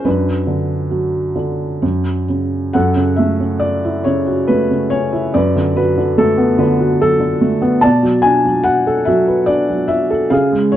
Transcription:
0.05 F#2 D4 B4
0.47 D3
0.91 F#3
1.36 D3
1.82 F#2
2.29 C#3
2.73 F#2 A4 F#5
2.96 C#3
3.16 A3 E5
3.40 C#3
3.60 D5
3.84 E4
4.04 C#3 C#5
4.27 F#4
4.47 A3 B4
4.71 C#3
4.90 C#4 C#5
5.12 E4
5.34 F#2 B4 D5
5.56 D3
5.76 F#3 B4
5.97 D3
6.18 A3 A4
6.38 B3
6.59 D3 B4
6.79 F#4
7.01 F#3 A4
7.20 D3
7.41 A3
7.62 B3
7.81 B2 D5 A5
8.03 F#3
8.22 D4 G#5
8.45 F#3
8.64 F#4 F#5
8.87 A4
9.05 F#3 E5
9.28 B4
9.46 D4 D5
9.69 F#3
9.88 F#4 E5
10.10 A4
10.30 C#3 G#4 F5
10.52 G#3
10.72 C#5

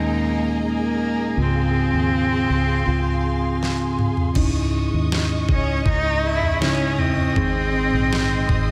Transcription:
Already playing: D#2 A#2 G#3 A#3 C#4 D#4 G#4 D#5 G#5 A#5
0.66 A#3
1.37 C#2 G#2 C#3 C4 F4 F5 C6
1.42 C4
1.93 D#2
2.50 C#2
2.86 C#2 C#3 C4 F4
3.63 snare
3.99 mid tom
4.17 floor tom
4.35 C#2 G#2 G#3 C#4 D#4 E4 D#5 C#6 D#6, kick, floor tom, crash
4.93 D#2
5.12 snare
5.49 C#2 C#4, kick, floor tom
5.85 C#2 D#4, kick, floor tom
6.26 E4
6.42 floor tom
6.61 C#3 C#4 D#4 E4, snare
6.98 C4, floor tom
7.17 floor tom
7.36 G#1 G#2 D#3 C4 D#4 G#4 D#5 C6, kick, floor tom
7.93 A#1
8.13 snare
8.49 G#1, kick, floor tom

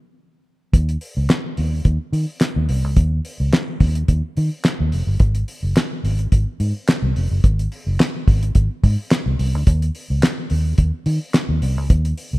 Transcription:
0.73 D#2, kick, closed hi-hat
0.89 closed hi-hat
1.01 open hi-hat
1.17 C#2
1.29 snare, clap, closed hi-hat
1.57 D#2, open hi-hat
1.85 D#2, kick, closed hi-hat
2.13 D#3, open hi-hat
2.40 snare, clap, closed hi-hat
2.56 D#2
2.69 C2, open hi-hat
2.84 C#2
2.97 D#2, kick, closed hi-hat
3.25 open hi-hat
3.40 C#2
3.53 snare, clap, closed hi-hat
3.80 D#2, kick, open hi-hat
3.95 closed hi-hat
4.08 D#2, kick, closed hi-hat
4.37 D#3, open hi-hat
4.64 snare, clap, closed hi-hat
4.80 D#2
4.92 F1, open hi-hat
5.07 G1
5.20 G#1, kick, closed hi-hat
5.35 closed hi-hat
5.48 open hi-hat
5.63 F#1
5.76 snare, clap, closed hi-hat
6.04 G#1, open hi-hat
6.19 closed hi-hat
6.32 G#1, kick, closed hi-hat
6.60 G#2, open hi-hat
6.88 snare, clap, closed hi-hat
7.02 C2
7.16 F1, open hi-hat
7.31 F#1
7.44 G#1, kick, closed hi-hat
7.59 closed hi-hat
7.72 open hi-hat
7.87 F#1
7.99 snare, clap, closed hi-hat
8.28 G#1, kick, open hi-hat
8.43 closed hi-hat
8.55 G#1, kick, closed hi-hat
8.84 G#2, kick, open hi-hat
9.11 snare, clap, closed hi-hat
9.26 C2
9.39 C2, open hi-hat
9.55 D2
9.67 D#2, kick, closed hi-hat
9.82 closed hi-hat
9.95 open hi-hat
10.10 C#2
10.23 snare, clap, closed hi-hat
10.50 D#2, open hi-hat
10.78 D#2, kick, closed hi-hat
11.06 D#3, open hi-hat
11.34 snare, clap, closed hi-hat
11.49 D#2
11.62 C2, open hi-hat
11.78 C#2
11.90 D#2, kick, closed hi-hat
12.05 closed hi-hat
12.17 open hi-hat
12.33 C#2

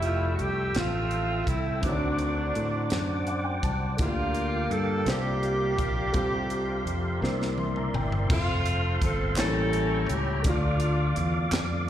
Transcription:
Already playing: F1 F3 G3 A3 E4 G4 A4 E5 G5 E6
0.02 F4, closed hi-hat
0.35 F#4, closed hi-hat
0.40 C2 G4
0.75 A1 A3 C4 F4, snare, closed hi-hat
1.11 closed hi-hat
1.47 C2 E4, kick, closed hi-hat
1.81 D2 D3 D#3 F#3 A3 C4 D4 F#4 C5 D5 F#5 D6, kick, closed hi-hat
1.87 C#5
1.93 D5
2.19 closed hi-hat
2.55 A2, closed hi-hat
2.90 F#2, snare, closed hi-hat
3.27 F#5, closed hi-hat
3.44 G5
3.63 C2 A5, kick, closed hi-hat
3.97 D2 D3 A3 A#3 F4 G4 D5 G5, kick, closed hi-hat
4.01 A#3 F4 F5
4.34 closed hi-hat
4.70 G2 A4, closed hi-hat
5.04 C2 C3 A#3 D4 F4 C5 D5 C6, snare, closed hi-hat
5.08 A#3 D4 G4
5.43 closed hi-hat
5.78 A#1, kick, closed hi-hat
6.12 C2 C3 C4 F4 A4 C5 F5, kick, closed hi-hat
6.50 closed hi-hat
6.86 F2, closed hi-hat
7.20 C2 C3 A#3 D4 E4 A#4 C5 D5 E5 C6, snare
7.42 snare
7.58 C6, high tom
7.76 A#5, mid tom
7.94 G1 G5, mid tom
8.12 floor tom
8.28 F1 A3 C4 F4 A4 C5 F5 C6, kick, crash
8.33 C4
8.66 closed hi-hat
9.02 G1 A4, kick, closed hi-hat
9.36 A1 A2 G3 A#3 C#4 E4 A4 C#5 G5 A#5, snare, clap, closed hi-hat
9.73 closed hi-hat
10.10 C#2 G4, closed hi-hat
10.42 D2 D3 A3 D4 F5, kick, closed hi-hat
10.47 A3 D4 F4 D5 D6
10.80 closed hi-hat
11.16 E2, closed hi-hat
11.52 F2, snare, clap, closed hi-hat

